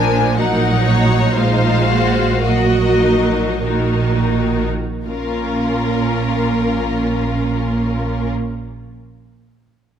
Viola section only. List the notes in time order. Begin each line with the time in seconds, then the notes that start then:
Already playing: F3 D4
0.39 F#3 D#4
1.38 G#3 F4
2.45 F#3 F#4
3.65 D#3 F#4
5.06 A#3 C#4